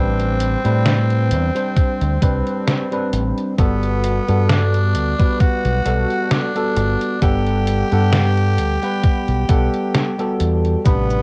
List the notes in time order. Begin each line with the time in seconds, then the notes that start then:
Already playing: A1 G3 C4 D4 B4
0.20 closed hi-hat
0.40 closed hi-hat
0.64 A2 G3 C4 D4 B4, closed hi-hat
0.86 snare, closed hi-hat
1.10 closed hi-hat
1.31 E2, closed hi-hat
1.55 G3 C4 D4 C5, closed hi-hat
1.77 kick, closed hi-hat
2.01 D2, closed hi-hat
2.22 C2 G3 C4 D4 B4, kick, closed hi-hat
2.47 closed hi-hat
2.68 snare, closed hi-hat
2.92 G3 C4 D4 B4, closed hi-hat
3.13 A1, closed hi-hat
3.38 closed hi-hat
3.58 G1 G3 B3 F#4 A4, kick, closed hi-hat
3.83 closed hi-hat
4.04 closed hi-hat
4.28 G2 G3 B3 F#4 A4, closed hi-hat
4.49 D4, snare, closed hi-hat
4.74 closed hi-hat
4.95 D2, closed hi-hat
5.19 G3 B3 F#4 B4, kick, closed hi-hat
5.40 F#4, muted fingered electric bass stroke, kick, closed hi-hat
5.65 B1, closed hi-hat
5.85 B1 G3 B3 F#4 A4, closed hi-hat
6.10 closed hi-hat
6.31 D4, snare, closed hi-hat
6.55 G3 B3 F#4 A4, closed hi-hat
6.77 G1, closed hi-hat
7.01 closed hi-hat
7.21 G1 G3 B3 G4 A4 F#5, kick, closed hi-hat
7.47 closed hi-hat
7.67 closed hi-hat
7.91 G2 G3 B3 A4 F#5, closed hi-hat
8.13 snare, closed hi-hat
8.37 closed hi-hat
8.58 D2, closed hi-hat
8.82 G3 B3 B4 F#5, closed hi-hat
9.04 kick, closed hi-hat
9.28 B1, closed hi-hat
9.49 B1 G3 B3 A4 F#5, kick, closed hi-hat
9.74 closed hi-hat
9.95 snare, closed hi-hat
10.19 G3 B3 F#4 A4, closed hi-hat
10.40 E2, closed hi-hat
10.65 closed hi-hat
10.85 A1 C3 G3 B3 D4 B4, kick, closed hi-hat, cabasa
11.10 closed hi-hat, cabasa